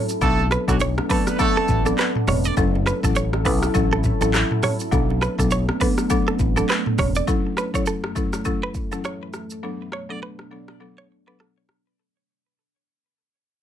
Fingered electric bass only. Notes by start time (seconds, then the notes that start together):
0.22 B1
0.68 B1
1.68 A1
2.28 E1
2.57 F#1
3.03 A1
3.45 B1
3.75 A1
4.21 A1
4.92 B1
5.39 B1
6.39 A1
6.99 E1